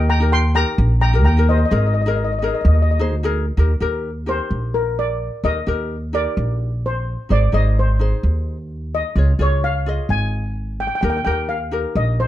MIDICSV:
0, 0, Header, 1, 4, 480
1, 0, Start_track
1, 0, Key_signature, -3, "major"
1, 0, Tempo, 465477
1, 1775, Time_signature, 4, 2, 24, 8
1, 12658, End_track
2, 0, Start_track
2, 0, Title_t, "Steel pan"
2, 0, Program_c, 0, 114
2, 98, Note_on_c, 0, 79, 82
2, 102, Note_on_c, 0, 82, 105
2, 321, Note_off_c, 0, 79, 0
2, 333, Note_on_c, 0, 79, 88
2, 340, Note_on_c, 0, 84, 115
2, 348, Note_off_c, 0, 82, 0
2, 556, Note_off_c, 0, 79, 0
2, 568, Note_on_c, 0, 79, 77
2, 574, Note_on_c, 0, 82, 109
2, 586, Note_off_c, 0, 84, 0
2, 1018, Note_off_c, 0, 79, 0
2, 1034, Note_off_c, 0, 82, 0
2, 1046, Note_on_c, 0, 82, 104
2, 1048, Note_on_c, 0, 79, 77
2, 1273, Note_off_c, 0, 82, 0
2, 1275, Note_off_c, 0, 79, 0
2, 1285, Note_on_c, 0, 82, 89
2, 1294, Note_on_c, 0, 79, 75
2, 1513, Note_off_c, 0, 82, 0
2, 1517, Note_off_c, 0, 79, 0
2, 1536, Note_on_c, 0, 75, 85
2, 1549, Note_on_c, 0, 72, 66
2, 1607, Note_off_c, 0, 75, 0
2, 1614, Note_off_c, 0, 72, 0
2, 1629, Note_on_c, 0, 75, 58
2, 1692, Note_off_c, 0, 75, 0
2, 1706, Note_on_c, 0, 75, 69
2, 1766, Note_off_c, 0, 75, 0
2, 1778, Note_on_c, 0, 75, 57
2, 1822, Note_off_c, 0, 75, 0
2, 1835, Note_on_c, 0, 75, 60
2, 1909, Note_off_c, 0, 75, 0
2, 1924, Note_on_c, 0, 75, 57
2, 1989, Note_off_c, 0, 75, 0
2, 2001, Note_on_c, 0, 75, 62
2, 2070, Note_off_c, 0, 75, 0
2, 2080, Note_on_c, 0, 75, 53
2, 2137, Note_off_c, 0, 75, 0
2, 2149, Note_on_c, 0, 75, 54
2, 2216, Note_off_c, 0, 75, 0
2, 2229, Note_on_c, 0, 75, 47
2, 2298, Note_off_c, 0, 75, 0
2, 2315, Note_on_c, 0, 75, 57
2, 2380, Note_off_c, 0, 75, 0
2, 2396, Note_on_c, 0, 75, 50
2, 2450, Note_off_c, 0, 75, 0
2, 2462, Note_on_c, 0, 75, 57
2, 2530, Note_off_c, 0, 75, 0
2, 2554, Note_on_c, 0, 75, 50
2, 2615, Note_off_c, 0, 75, 0
2, 2626, Note_on_c, 0, 75, 59
2, 2679, Note_off_c, 0, 75, 0
2, 2691, Note_on_c, 0, 75, 53
2, 2751, Note_off_c, 0, 75, 0
2, 2764, Note_on_c, 0, 75, 59
2, 2823, Note_off_c, 0, 75, 0
2, 2835, Note_on_c, 0, 75, 53
2, 2899, Note_off_c, 0, 75, 0
2, 2911, Note_on_c, 0, 75, 67
2, 2984, Note_off_c, 0, 75, 0
2, 3002, Note_on_c, 0, 75, 58
2, 3069, Note_off_c, 0, 75, 0
2, 4424, Note_on_c, 0, 72, 80
2, 4891, Note_on_c, 0, 70, 81
2, 4912, Note_off_c, 0, 72, 0
2, 5115, Note_off_c, 0, 70, 0
2, 5145, Note_on_c, 0, 74, 85
2, 5617, Note_on_c, 0, 75, 101
2, 5633, Note_off_c, 0, 74, 0
2, 6338, Note_on_c, 0, 74, 95
2, 6357, Note_off_c, 0, 75, 0
2, 7015, Note_off_c, 0, 74, 0
2, 7073, Note_on_c, 0, 72, 79
2, 7547, Note_on_c, 0, 74, 96
2, 7558, Note_off_c, 0, 72, 0
2, 7777, Note_on_c, 0, 75, 94
2, 7788, Note_off_c, 0, 74, 0
2, 8024, Note_off_c, 0, 75, 0
2, 8036, Note_on_c, 0, 72, 74
2, 8250, Note_off_c, 0, 72, 0
2, 9225, Note_on_c, 0, 75, 89
2, 9715, Note_off_c, 0, 75, 0
2, 9718, Note_on_c, 0, 73, 85
2, 9941, Note_on_c, 0, 77, 92
2, 9954, Note_off_c, 0, 73, 0
2, 10419, Note_on_c, 0, 80, 89
2, 10433, Note_off_c, 0, 77, 0
2, 11139, Note_on_c, 0, 79, 87
2, 11160, Note_off_c, 0, 80, 0
2, 11200, Note_off_c, 0, 79, 0
2, 11213, Note_on_c, 0, 79, 70
2, 11283, Note_off_c, 0, 79, 0
2, 11295, Note_on_c, 0, 79, 85
2, 11344, Note_off_c, 0, 79, 0
2, 11356, Note_on_c, 0, 79, 72
2, 11431, Note_off_c, 0, 79, 0
2, 11444, Note_on_c, 0, 79, 78
2, 11506, Note_off_c, 0, 79, 0
2, 11518, Note_on_c, 0, 79, 68
2, 11585, Note_off_c, 0, 79, 0
2, 11597, Note_on_c, 0, 79, 81
2, 11654, Note_off_c, 0, 79, 0
2, 11666, Note_on_c, 0, 79, 72
2, 11750, Note_off_c, 0, 79, 0
2, 11846, Note_on_c, 0, 77, 84
2, 12340, Note_on_c, 0, 75, 81
2, 12346, Note_off_c, 0, 77, 0
2, 12579, Note_on_c, 0, 72, 82
2, 12586, Note_off_c, 0, 75, 0
2, 12658, Note_off_c, 0, 72, 0
2, 12658, End_track
3, 0, Start_track
3, 0, Title_t, "Ukulele"
3, 0, Program_c, 1, 24
3, 206, Note_on_c, 1, 63, 81
3, 216, Note_on_c, 1, 67, 64
3, 228, Note_on_c, 1, 70, 80
3, 428, Note_off_c, 1, 63, 0
3, 433, Note_off_c, 1, 67, 0
3, 439, Note_off_c, 1, 70, 0
3, 563, Note_on_c, 1, 63, 74
3, 575, Note_on_c, 1, 67, 71
3, 583, Note_on_c, 1, 70, 79
3, 930, Note_off_c, 1, 63, 0
3, 936, Note_off_c, 1, 67, 0
3, 940, Note_off_c, 1, 70, 0
3, 1166, Note_on_c, 1, 63, 75
3, 1171, Note_on_c, 1, 67, 66
3, 1185, Note_on_c, 1, 70, 80
3, 1315, Note_off_c, 1, 63, 0
3, 1317, Note_off_c, 1, 67, 0
3, 1324, Note_off_c, 1, 70, 0
3, 1410, Note_on_c, 1, 63, 78
3, 1420, Note_on_c, 1, 67, 71
3, 1431, Note_on_c, 1, 70, 88
3, 1628, Note_off_c, 1, 63, 0
3, 1633, Note_off_c, 1, 67, 0
3, 1639, Note_off_c, 1, 70, 0
3, 1761, Note_on_c, 1, 63, 71
3, 1767, Note_on_c, 1, 68, 66
3, 1777, Note_on_c, 1, 70, 85
3, 1983, Note_off_c, 1, 63, 0
3, 1986, Note_off_c, 1, 68, 0
3, 1991, Note_off_c, 1, 70, 0
3, 2123, Note_on_c, 1, 63, 75
3, 2133, Note_on_c, 1, 68, 65
3, 2143, Note_on_c, 1, 70, 83
3, 2344, Note_off_c, 1, 63, 0
3, 2349, Note_off_c, 1, 68, 0
3, 2354, Note_off_c, 1, 70, 0
3, 2496, Note_on_c, 1, 63, 71
3, 2500, Note_on_c, 1, 68, 67
3, 2513, Note_on_c, 1, 70, 79
3, 2854, Note_off_c, 1, 63, 0
3, 2856, Note_off_c, 1, 68, 0
3, 2862, Note_off_c, 1, 70, 0
3, 3087, Note_on_c, 1, 63, 75
3, 3095, Note_on_c, 1, 68, 65
3, 3104, Note_on_c, 1, 72, 85
3, 3233, Note_off_c, 1, 63, 0
3, 3237, Note_off_c, 1, 68, 0
3, 3241, Note_off_c, 1, 72, 0
3, 3333, Note_on_c, 1, 63, 81
3, 3343, Note_on_c, 1, 68, 81
3, 3351, Note_on_c, 1, 70, 96
3, 3549, Note_off_c, 1, 63, 0
3, 3551, Note_off_c, 1, 68, 0
3, 3557, Note_off_c, 1, 70, 0
3, 3684, Note_on_c, 1, 63, 78
3, 3694, Note_on_c, 1, 67, 68
3, 3704, Note_on_c, 1, 70, 86
3, 3831, Note_off_c, 1, 63, 0
3, 3837, Note_off_c, 1, 67, 0
3, 3842, Note_off_c, 1, 70, 0
3, 3922, Note_on_c, 1, 63, 77
3, 3929, Note_on_c, 1, 67, 76
3, 3939, Note_on_c, 1, 70, 88
3, 4215, Note_off_c, 1, 63, 0
3, 4218, Note_off_c, 1, 67, 0
3, 4223, Note_off_c, 1, 70, 0
3, 4395, Note_on_c, 1, 63, 61
3, 4402, Note_on_c, 1, 67, 58
3, 4416, Note_on_c, 1, 70, 63
3, 4979, Note_off_c, 1, 63, 0
3, 4983, Note_off_c, 1, 67, 0
3, 4990, Note_off_c, 1, 70, 0
3, 5605, Note_on_c, 1, 63, 60
3, 5613, Note_on_c, 1, 67, 57
3, 5623, Note_on_c, 1, 70, 67
3, 5753, Note_off_c, 1, 63, 0
3, 5757, Note_off_c, 1, 67, 0
3, 5762, Note_off_c, 1, 70, 0
3, 5842, Note_on_c, 1, 63, 70
3, 5846, Note_on_c, 1, 67, 63
3, 5859, Note_on_c, 1, 70, 82
3, 6135, Note_off_c, 1, 63, 0
3, 6138, Note_off_c, 1, 67, 0
3, 6144, Note_off_c, 1, 70, 0
3, 6320, Note_on_c, 1, 63, 68
3, 6328, Note_on_c, 1, 67, 57
3, 6339, Note_on_c, 1, 70, 68
3, 6904, Note_off_c, 1, 63, 0
3, 6907, Note_off_c, 1, 67, 0
3, 6913, Note_off_c, 1, 70, 0
3, 7518, Note_on_c, 1, 63, 57
3, 7527, Note_on_c, 1, 68, 47
3, 7535, Note_on_c, 1, 72, 74
3, 7671, Note_off_c, 1, 63, 0
3, 7673, Note_off_c, 1, 68, 0
3, 7679, Note_off_c, 1, 72, 0
3, 7756, Note_on_c, 1, 63, 70
3, 7766, Note_on_c, 1, 68, 69
3, 7777, Note_on_c, 1, 72, 80
3, 8054, Note_off_c, 1, 63, 0
3, 8059, Note_off_c, 1, 68, 0
3, 8064, Note_off_c, 1, 72, 0
3, 8242, Note_on_c, 1, 63, 64
3, 8254, Note_on_c, 1, 68, 59
3, 8260, Note_on_c, 1, 72, 72
3, 8826, Note_off_c, 1, 63, 0
3, 8831, Note_off_c, 1, 68, 0
3, 8835, Note_off_c, 1, 72, 0
3, 9450, Note_on_c, 1, 65, 65
3, 9462, Note_on_c, 1, 68, 57
3, 9469, Note_on_c, 1, 73, 65
3, 9597, Note_off_c, 1, 65, 0
3, 9603, Note_off_c, 1, 68, 0
3, 9607, Note_off_c, 1, 73, 0
3, 9683, Note_on_c, 1, 65, 74
3, 9693, Note_on_c, 1, 68, 70
3, 9704, Note_on_c, 1, 73, 76
3, 9978, Note_off_c, 1, 65, 0
3, 9983, Note_off_c, 1, 68, 0
3, 9988, Note_off_c, 1, 73, 0
3, 10170, Note_on_c, 1, 65, 67
3, 10182, Note_on_c, 1, 68, 58
3, 10194, Note_on_c, 1, 75, 73
3, 10750, Note_off_c, 1, 65, 0
3, 10756, Note_off_c, 1, 68, 0
3, 10762, Note_off_c, 1, 75, 0
3, 11366, Note_on_c, 1, 63, 62
3, 11375, Note_on_c, 1, 67, 58
3, 11386, Note_on_c, 1, 70, 71
3, 11516, Note_off_c, 1, 63, 0
3, 11520, Note_off_c, 1, 67, 0
3, 11526, Note_off_c, 1, 70, 0
3, 11596, Note_on_c, 1, 63, 68
3, 11609, Note_on_c, 1, 67, 63
3, 11619, Note_on_c, 1, 70, 78
3, 11895, Note_off_c, 1, 63, 0
3, 11901, Note_off_c, 1, 67, 0
3, 11906, Note_off_c, 1, 70, 0
3, 12079, Note_on_c, 1, 63, 65
3, 12087, Note_on_c, 1, 67, 59
3, 12098, Note_on_c, 1, 70, 70
3, 12658, Note_off_c, 1, 63, 0
3, 12658, Note_off_c, 1, 67, 0
3, 12658, Note_off_c, 1, 70, 0
3, 12658, End_track
4, 0, Start_track
4, 0, Title_t, "Upright bass"
4, 0, Program_c, 2, 32
4, 0, Note_on_c, 2, 39, 104
4, 647, Note_off_c, 2, 39, 0
4, 806, Note_on_c, 2, 34, 97
4, 1285, Note_off_c, 2, 34, 0
4, 1285, Note_on_c, 2, 39, 96
4, 1686, Note_off_c, 2, 39, 0
4, 1768, Note_on_c, 2, 32, 98
4, 2565, Note_off_c, 2, 32, 0
4, 2730, Note_on_c, 2, 39, 97
4, 3204, Note_off_c, 2, 39, 0
4, 3204, Note_on_c, 2, 38, 88
4, 3605, Note_off_c, 2, 38, 0
4, 3684, Note_on_c, 2, 39, 93
4, 3886, Note_off_c, 2, 39, 0
4, 3925, Note_on_c, 2, 39, 71
4, 4525, Note_off_c, 2, 39, 0
4, 4645, Note_on_c, 2, 34, 81
4, 5445, Note_off_c, 2, 34, 0
4, 5605, Note_on_c, 2, 39, 84
4, 5807, Note_off_c, 2, 39, 0
4, 5847, Note_on_c, 2, 39, 73
4, 6447, Note_off_c, 2, 39, 0
4, 6569, Note_on_c, 2, 34, 88
4, 7368, Note_off_c, 2, 34, 0
4, 7531, Note_on_c, 2, 32, 86
4, 7732, Note_off_c, 2, 32, 0
4, 7767, Note_on_c, 2, 32, 68
4, 8368, Note_off_c, 2, 32, 0
4, 8490, Note_on_c, 2, 39, 91
4, 9289, Note_off_c, 2, 39, 0
4, 9441, Note_on_c, 2, 37, 91
4, 9646, Note_off_c, 2, 37, 0
4, 9680, Note_on_c, 2, 37, 75
4, 10284, Note_off_c, 2, 37, 0
4, 10405, Note_on_c, 2, 32, 85
4, 11206, Note_off_c, 2, 32, 0
4, 11371, Note_on_c, 2, 39, 96
4, 11572, Note_off_c, 2, 39, 0
4, 11612, Note_on_c, 2, 39, 71
4, 12211, Note_off_c, 2, 39, 0
4, 12327, Note_on_c, 2, 34, 91
4, 12658, Note_off_c, 2, 34, 0
4, 12658, End_track
0, 0, End_of_file